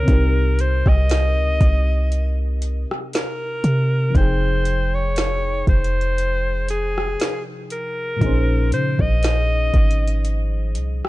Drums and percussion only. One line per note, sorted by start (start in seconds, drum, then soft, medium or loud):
0.08 kick loud
0.08 closed hi-hat medium
0.59 closed hi-hat medium
0.86 kick medium
0.86 cross-stick medium
1.09 snare loud
1.09 closed hi-hat medium
1.61 kick medium
1.61 closed hi-hat medium
2.12 closed hi-hat medium
2.62 closed hi-hat medium
2.91 cross-stick medium
3.13 snare loud
3.13 closed hi-hat medium
3.64 closed hi-hat medium
4.15 kick loud
4.15 closed hi-hat medium
4.65 closed hi-hat medium
5.16 snare loud
5.16 closed hi-hat medium
5.67 kick loud
5.67 closed hi-hat soft
5.84 closed hi-hat medium
6.01 closed hi-hat medium
6.18 closed hi-hat medium
6.69 closed hi-hat medium
6.98 cross-stick medium
7.20 snare loud
7.20 closed hi-hat medium
7.70 closed hi-hat medium
8.21 kick loud
8.21 closed hi-hat medium
8.72 closed hi-hat medium
8.99 kick medium
9.23 snare loud
9.23 closed hi-hat medium
9.74 kick medium
9.74 closed hi-hat soft
9.91 closed hi-hat medium
10.08 closed hi-hat medium
10.25 closed hi-hat medium
10.75 closed hi-hat medium
11.05 cross-stick medium